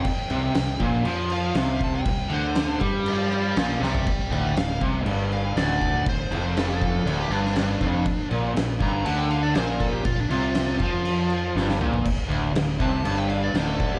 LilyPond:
<<
  \new Staff \with { instrumentName = "Lead electric guitar" } { \time 4/4 \key d \minor \tempo 4 = 120 g''8 g''4 r4 f''4 a''16 g''16~ | g''8 c''4 r8 <c'' f''>8 <c'' f''>8 <c'' f''>8 <d'' g''>8 | <d'' g''>8 <d'' g''>8 f''8 r4 f''8 d''4 | c''4 a'16 a'4 g'16 d'4.~ |
d'8 r4 bes''8 a''16 g''16 f''16 d''16 c''16 bes'16 a'16 g'16 | f'16 d'16 f'2. r8 | r4. a''8 a''16 g''16 f''16 d''16 c''16 a'16 a'16 g'16 | }
  \new Staff \with { instrumentName = "Overdriven electric guitar" } { \clef bass \time 4/4 \key d \minor r8 c8 c8 bes,8 f4 c4 | c8 d4 g4. bes,8 c8 | r8 d,8 d,8 c8 g,4 d,4 | d,8 f,4. d,8 g,4 f,8 |
r8 bes,8 bes,8 g,8 d4 bes,4 | bes,8 c4 f4. g,8 bes,8 | r8 d,8 d,8 c8 g,4 d,4 | }
  \new Staff \with { instrumentName = "Fingered electric bass" } { \clef bass \time 4/4 \key d \minor r8 c,8 c,8 bes,,8 f,4 c,4 | c,8 d,4 g,4. bes,,8 c,8 | r8 d,,8 d,,8 c,8 g,,4 d,,4 | d,,8 f,,4. d,,8 g,,4 f,,8 |
r8 bes,,8 bes,,8 g,,8 d,4 bes,,4 | bes,,8 c,4 f,4. g,,8 bes,,8 | r8 d,,8 d,,8 c,8 g,,4 d,,4 | }
  \new DrumStaff \with { instrumentName = "Drums" } \drummode { \time 4/4 <cymc bd>8 cymc8 <cymc sn>8 <cymc bd>8 cymc8 cymc8 <cymc sn>8 <cymc bd>8 | <cymc bd>8 cymc8 <cymc sn>8 <cymc bd>8 cymc8 cymc8 <cymc sn>8 sn16 tomfh16 | <cymc bd>8 cymc8 <cymc sn>8 <cymc bd>8 cymc8 cymc8 <cymc sn>8 <cymc bd>8 | <cymc bd>8 cymc8 <cymc sn>8 <cymc bd>8 cymc8 cymc16 sn16 <cymc sn>8 <cymc bd>8 |
<cymc bd>8 cymc8 <cymc sn>8 <cymc bd>8 cymc8 cymc8 <cymc sn>8 <cymc bd>8 | <cymc bd>8 cymc8 <cymc sn>8 <cymc bd>8 cymc8 cymc8 sn16 sn16 toml16 tomfh16 | <cymc bd>8 cymc8 <cymc sn>8 <cymc bd>8 cymc8 cymc8 <cymc sn>8 <cymc bd>8 | }
>>